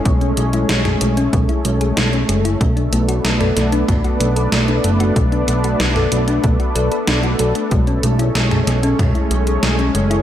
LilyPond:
<<
  \new Staff \with { instrumentName = "Synth arpeggio sound" } { \time 4/4 \key b \dorian \tempo 4 = 94 gis16 cis'16 gis16 e'16 gis16 gis'16 gis16 cis'16 gis16 e'16 gis16 gis'16 gis16 cis'16 gis16 e'16 | a16 d'16 a16 fis'16 a16 a'16 a16 d'16 a16 fis'16 a16 a'16 a16 d'16 a16 fis'16 | a16 d'16 a16 fis'16 a16 a'16 a16 d'16 a16 fis'16 a'16 a'16 d'16 fis'16 a'16 a16 | gis16 cis'16 gis16 e'16 gis16 gis'16 gis16 cis'16 gis16 e'16 gis16 gis'16 gis16 cis'16 gis16 e'16 | }
  \new Staff \with { instrumentName = "Analog synth pad" } { \time 4/4 \key b \dorian <gis a cis'>1 | <b d'>1~ | <b d'>1 | <gis cis'>1 | }
  \new Staff \with { instrumentName = "Analog synth bass" } { \clef bass \time 4/4 \key b \dorian b,,8 b,,8 b,,8 b,,8 b,,8 b,,8 b,,8 fis,,8 | b,,8 b,,8 b,,8 b,,8 b,,8 b,,8 b,,8 fis,,8 | b,,8 b,,8 b,,8 b,,8 b,,8 b,,8 b,,8 b,,8 | b,,8 b,,8 b,,8 b,,8 b,,8 b,,8 b,,8 fis,,8 | }
  \new DrumStaff \with { instrumentName = "Drums" } \drummode { \time 4/4 <hh bd>16 hh16 hh16 hh16 <hh sn>16 <hh sn toml>16 hh16 hh16 <hh bd>16 hh16 hh16 hh16 <hh sn>16 hh16 hh16 hh16 | <hh bd>16 hh16 hh16 hh16 <hh sn>16 <hh toml>16 <hh sn>16 hh16 <hh bd toml>16 hh16 hh16 hh16 <hh sn>16 hh16 hh16 hh16 | <hh bd>16 hh16 hh16 hh16 <hh sn>16 <hh sn toml>16 hh16 hh16 <hh bd>16 hh16 hh16 hh16 <hh sn>16 hh16 hh16 hh16 | <hh bd>16 hh16 hh16 hh16 <hh sn>16 <hh toml>16 <hh sn>16 hh16 <hh bd toml>16 hh16 hh16 hh16 <hh sn>16 hh16 hh16 hh16 | }
>>